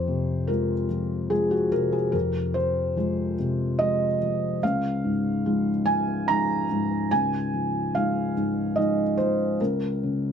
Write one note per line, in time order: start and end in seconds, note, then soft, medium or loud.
0.00 2.10 F2 soft
0.00 0.48 C5 medium
0.08 0.74 C3 soft
0.47 0.86 F3 soft
0.47 0.86 G#3 soft
0.47 0.86 F4 soft
0.47 1.31 A#4 medium
0.89 1.29 F3 soft
1.30 1.68 F3 soft
1.30 1.68 G#3 soft
1.30 1.68 F4 soft
1.30 1.51 G#4 medium
1.51 1.72 F#4 medium
1.72 2.38 C3 soft
1.72 1.93 A#4 medium
1.92 2.14 G#4 medium
2.12 4.58 F2 medium
2.12 2.54 A#4 medium
2.54 2.95 F3 soft
2.54 3.38 C5 medium
2.96 3.34 F3 soft
2.96 3.35 G#3 soft
2.96 3.35 F4 soft
3.39 4.05 C3 soft
3.79 4.17 F3 soft
3.79 4.17 G#3 soft
3.79 4.17 F4 soft
3.79 4.62 D#5 medium
4.22 4.63 F3 soft
4.63 7.06 C#2 medium
4.63 5.86 F5 medium
5.04 5.70 G#2 soft
5.46 5.82 F3 soft
5.46 5.82 G#3 soft
5.46 5.82 D#4 soft
5.86 6.26 F3 soft
5.86 6.27 G#5 medium
6.28 6.65 F3 soft
6.28 6.65 G#3 soft
6.28 6.65 D#4 soft
6.28 7.11 A#5 medium
6.71 7.36 G#2 soft
7.11 9.56 C#2 medium
7.11 7.94 G#5 medium
7.53 7.93 F3 soft
7.95 8.32 F3 soft
7.95 8.32 G#3 soft
7.95 8.32 D#4 soft
7.95 8.77 F5 medium
8.37 9.02 G#2 soft
8.76 9.14 F3 soft
8.76 9.14 G#3 soft
8.76 9.14 D#4 soft
8.76 9.17 D#5 medium
9.17 9.60 F3 soft
9.17 9.59 C5 medium
9.61 10.32 C#2 soft
9.61 10.32 A#4 medium
10.03 10.32 C#3 soft